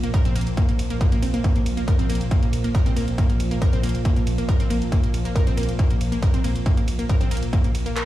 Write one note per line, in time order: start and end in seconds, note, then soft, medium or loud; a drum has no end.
0.00 8.05 A#2 medium
0.00 8.05 F3 medium
0.00 0.08 A#3 medium
0.00 closed hi-hat medium
0.14 0.18 A#4 loud
0.14 kick loud
0.14 closed hi-hat medium
0.25 0.35 A#1 medium
0.25 0.29 C4 loud
0.25 closed hi-hat medium
0.35 0.47 A#1 medium
0.35 0.40 A#3 loud
0.35 open hi-hat loud
0.35 ride medium
0.41 closed hi-hat medium
0.47 closed hi-hat medium
0.57 0.64 A#3 medium
0.57 kick loud
0.57 closed hi-hat medium
0.69 0.78 A#1 medium
0.69 0.73 A#3 medium
0.69 closed hi-hat medium
0.79 0.90 A#1 loud
0.79 open hi-hat loud
0.79 ride medium
0.90 0.94 A#3 medium
0.90 closed hi-hat medium
1.01 kick loud
1.01 closed hi-hat medium
1.12 1.22 A#1 medium
1.12 1.16 A#3 loud
1.12 closed hi-hat medium
1.22 1.34 A#1 loud
1.22 1.25 C4 medium
1.22 open hi-hat loud
1.22 ride medium
1.34 1.40 A#3 medium
1.34 closed hi-hat medium
1.44 1.51 A#3 medium
1.44 kick loud
1.44 closed hi-hat medium
1.56 1.65 A#1 medium
1.56 1.60 A#3 medium
1.56 closed hi-hat soft
1.66 1.77 A#1 loud
1.66 open hi-hat loud
1.66 ride medium
1.77 1.81 A#3 medium
1.77 closed hi-hat medium
1.88 1.92 A#4 loud
1.88 kick loud
1.88 closed hi-hat medium
1.99 2.09 A#1 medium
1.99 2.03 C4 loud
1.99 closed hi-hat soft
2.09 2.21 A#1 loud
2.09 2.14 A#3 loud
2.09 open hi-hat loud
2.09 ride medium
2.15 closed hi-hat medium
2.21 closed hi-hat medium
2.31 2.38 A#3 medium
2.31 kick loud
2.31 closed hi-hat medium
2.42 2.52 A#1 medium
2.42 2.47 A#3 medium
2.42 closed hi-hat soft
2.53 2.64 A#1 loud
2.53 open hi-hat loud
2.53 ride medium
2.64 2.68 A#3 medium
2.64 closed hi-hat medium
2.75 2.79 A#4 loud
2.75 kick loud
2.75 closed hi-hat medium
2.86 2.96 A#1 medium
2.86 2.90 C4 loud
2.86 closed hi-hat medium
2.96 3.07 A#1 loud
2.96 3.01 A#3 loud
2.96 open hi-hat loud
2.96 ride medium
3.08 closed hi-hat soft
3.18 3.25 A#3 medium
3.18 kick loud
3.18 closed hi-hat medium
3.29 3.39 A#1 medium
3.29 3.34 A#3 medium
3.29 closed hi-hat soft
3.40 3.51 A#1 loud
3.40 open hi-hat loud
3.40 ride medium
3.51 3.55 A#3 medium
3.51 closed hi-hat medium
3.62 3.66 A#4 loud
3.62 kick loud
3.62 closed hi-hat medium
3.73 3.83 A#1 medium
3.73 3.77 C4 loud
3.73 closed hi-hat soft
3.83 3.94 A#1 loud
3.83 3.88 A#3 loud
3.83 open hi-hat loud
3.83 ride medium
3.89 closed hi-hat medium
3.95 closed hi-hat medium
4.05 4.12 A#3 medium
4.05 kick loud
4.05 closed hi-hat medium
4.16 4.26 A#1 medium
4.16 4.21 A#3 medium
4.16 closed hi-hat soft
4.27 4.38 A#1 loud
4.27 open hi-hat loud
4.27 ride medium
4.38 4.42 A#3 medium
4.38 closed hi-hat medium
4.49 4.53 A#4 loud
4.49 kick loud
4.49 closed hi-hat medium
4.60 4.70 A#1 medium
4.60 4.64 C4 loud
4.60 closed hi-hat medium
4.70 4.81 A#1 loud
4.70 4.75 A#3 loud
4.70 open hi-hat loud
4.70 ride medium
4.82 closed hi-hat medium
4.92 4.99 A#3 medium
4.92 kick loud
4.92 closed hi-hat medium
5.03 5.13 A#1 medium
5.03 5.07 A#3 medium
5.03 closed hi-hat medium
5.14 5.25 A#1 loud
5.14 open hi-hat loud
5.14 ride medium
5.25 5.29 A#3 medium
5.25 closed hi-hat medium
5.36 5.40 A#4 loud
5.36 kick loud
5.36 closed hi-hat medium
5.47 5.57 A#1 medium
5.47 5.51 C4 loud
5.47 closed hi-hat soft
5.57 5.68 A#1 loud
5.57 5.62 A#3 loud
5.57 open hi-hat loud
5.57 ride medium
5.63 closed hi-hat medium
5.69 closed hi-hat medium
5.79 5.86 A#3 medium
5.79 kick loud
5.79 closed hi-hat medium
5.90 6.00 A#1 medium
5.90 5.94 A#3 medium
5.90 closed hi-hat medium
6.01 6.12 A#1 loud
6.01 open hi-hat loud
6.01 ride medium
6.12 6.16 A#3 medium
6.12 closed hi-hat medium
6.22 6.27 A#4 loud
6.22 kick loud
6.22 closed hi-hat medium
6.34 6.44 A#1 medium
6.34 6.38 C4 loud
6.34 closed hi-hat medium
6.44 6.55 A#1 loud
6.44 6.49 A#3 loud
6.44 open hi-hat loud
6.44 ride medium
6.56 closed hi-hat medium
6.66 6.73 A#3 medium
6.66 kick loud
6.66 closed hi-hat medium
6.77 6.87 A#1 medium
6.77 6.81 A#3 medium
6.77 closed hi-hat medium
6.88 6.99 A#1 loud
6.88 open hi-hat loud
6.88 ride medium
6.99 7.03 A#3 medium
6.99 closed hi-hat medium
7.09 7.14 A#4 loud
7.09 kick loud
7.09 closed hi-hat medium
7.21 7.31 A#1 medium
7.21 7.25 C4 loud
7.21 closed hi-hat medium
7.31 7.42 A#1 loud
7.31 7.36 A#3 loud
7.31 open hi-hat loud
7.31 ride medium
7.37 closed hi-hat medium
7.43 closed hi-hat medium
7.53 7.60 A#3 medium
7.53 kick loud
7.53 closed hi-hat medium
7.64 7.74 A#1 medium
7.64 7.68 A#3 medium
7.64 closed hi-hat medium
7.75 7.86 A#1 medium
7.75 open hi-hat loud
7.75 ride medium
7.86 7.90 A#3 medium
7.86 closed hi-hat medium
7.96 8.01 A#4 loud
7.96 clap loud
7.96 closed hi-hat medium